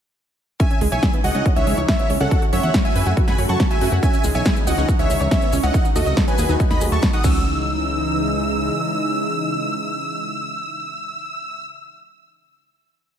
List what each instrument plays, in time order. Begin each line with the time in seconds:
0.60 analog synth pad C#3 E3 G#3 D#4, synth pluck C#4, supersaw synth E5 G#5, digital synth lead G#5, kick, closed hi-hat
0.71 synth pluck C#4, closed hi-hat
0.81 analog synth bass C#2, synth pluck G#3, open hi-hat
0.92 analog synth bass B1, synth pluck C#5, supersaw synth E5 G#5, digital synth lead G#5
1.03 synth pluck G#4, kick, snare, closed hi-hat
1.13 synth pluck B3, closed hi-hat
1.24 analog synth bass C#2, synth pluck F#4, supersaw synth D#5 F#5, digital synth lead F#5, open hi-hat
1.35 analog synth bass C#2, synth pluck C#4, closed hi-hat
1.46 synth pluck C#4, kick, closed hi-hat
1.56 analog synth bass C#2, synth pluck C#4, supersaw synth C#5 E5, digital synth lead E5, closed hi-hat
1.67 analog synth bass C#2, synth pluck G#4, open hi-hat
1.78 analog synth bass C#2, synth pluck C#5, closed hi-hat
1.88 synth pluck C#4, supersaw synth C#5 E5, digital synth lead E5, kick, snare, closed hi-hat
1.99 synth pluck B3, closed hi-hat
2.10 analog synth bass C#2, synth pluck C#4, open hi-hat
2.20 analog synth bass C#2, synth pluck C#4, supersaw synth A4 F#5, digital synth lead F#5, closed hi-hat
2.31 analog synth pad F#3 A3 F#4, synth pluck F#4, kick, closed hi-hat
2.42 synth pluck F#4, closed hi-hat
2.53 analog synth bass F#2, synth pluck C#4, supersaw synth C#5 E5, digital synth lead E5, open hi-hat
2.63 analog synth bass E2, synth pluck F#5, closed hi-hat
2.74 synth pluck C#5, kick, snare, closed hi-hat
2.85 synth pluck E4, supersaw synth E5 G#5, digital synth lead G#5, closed hi-hat
2.95 analog synth bass F#2, synth pluck B4, open hi-hat
3.06 analog synth bass F#2, synth pluck F#4, closed hi-hat
3.17 synth pluck F#4, kick, closed hi-hat
3.28 analog synth bass F#2, synth pluck F#4, supersaw synth G#5 B5, digital synth lead B5, snare, closed hi-hat
3.38 analog synth bass F#2, synth pluck C#5, open hi-hat
3.49 analog synth bass F#2, synth pluck F#5, supersaw synth A5 C#6, digital synth lead C#6, closed hi-hat
3.60 synth pluck F#4, kick, snare, closed hi-hat
3.71 synth pluck E4, supersaw synth E5 G#5, digital synth lead G#5, closed hi-hat
3.81 analog synth bass F#2, synth pluck F#4, open hi-hat
3.92 analog synth bass F#2, synth pluck F#4, closed hi-hat
4.03 analog synth pad E3 G#3 D#4, synth pluck C#4, supersaw synth E5 G#5, digital synth lead G#5, kick, closed hi-hat, cabasa
4.13 synth pluck C#4, closed hi-hat, cabasa
4.24 analog synth bass C#2, synth pluck G#3, open hi-hat, cabasa
4.35 analog synth bass B1, synth pluck C#5, supersaw synth E5 G#5, digital synth lead G#5, closed hi-hat, cabasa
4.45 synth pluck G#4, kick, snare, closed hi-hat, cabasa
4.56 synth pluck B3, closed hi-hat, cabasa
4.67 analog synth bass C#2, synth pluck F#4, supersaw synth D#5 F#5, digital synth lead F#5, open hi-hat, cabasa
4.78 analog synth bass C#2, synth pluck C#4, closed hi-hat, cabasa
4.88 synth pluck C#4, kick, closed hi-hat, cabasa
4.99 analog synth bass C#2, synth pluck C#4, supersaw synth C#5 E5, digital synth lead E5, closed hi-hat, cabasa
5.10 analog synth bass C#2, synth pluck G#4, open hi-hat, cabasa
5.21 analog synth bass C#2, synth pluck C#5, closed hi-hat, cabasa
5.31 synth pluck C#4, supersaw synth C#5 E5, digital synth lead E5, kick, snare, closed hi-hat, cabasa
5.42 synth pluck B3, closed hi-hat, cabasa
5.53 analog synth bass C#2, synth pluck C#4, open hi-hat, cabasa
5.63 analog synth bass C#2, synth pluck C#4, supersaw synth D#5 F#5, digital synth lead F#5, cabasa
5.74 analog synth pad D#3 F#3 A3 F#4, synth pluck D#4, kick, closed hi-hat, cabasa
5.85 synth pluck D#4, closed hi-hat, cabasa
5.95 analog synth bass D#2, synth pluck A3, supersaw synth F#4 D#5, digital synth lead D#5, open hi-hat, cabasa
6.06 analog synth bass C#2, synth pluck D#5, closed hi-hat, cabasa
6.17 synth pluck A4, kick, snare, closed hi-hat, cabasa
6.28 synth pluck C#4, supersaw synth B4 G#5, digital synth lead G#5, closed hi-hat, cabasa
6.38 analog synth bass D#2, synth pluck G#4, open hi-hat, cabasa
6.49 analog synth bass D#2, synth pluck D#4, closed hi-hat, cabasa
6.60 synth pluck D#4, kick, closed hi-hat, cabasa
6.70 analog synth bass D#2, synth pluck D#4, supersaw synth D#5 B5, digital synth lead B5, snare, closed hi-hat, cabasa
6.81 analog synth bass D#2, synth pluck G#4, open hi-hat, cabasa
6.92 analog synth bass D#2, synth pluck A3, supersaw synth A5 C#6, digital synth lead C#6, closed hi-hat, cabasa
7.02 synth pluck D#5, kick, snare, closed hi-hat, cabasa
7.13 synth pluck D#4, supersaw synth F#5 D#6, digital synth lead D#6, closed hi-hat, cabasa
7.24 analog synth bass C#2, analog synth pad C#3 E3 G#3 D#4, synth pluck C#4, digital synth lead E6, supersaw synth E6, kick, crash, cabasa
7.35 cabasa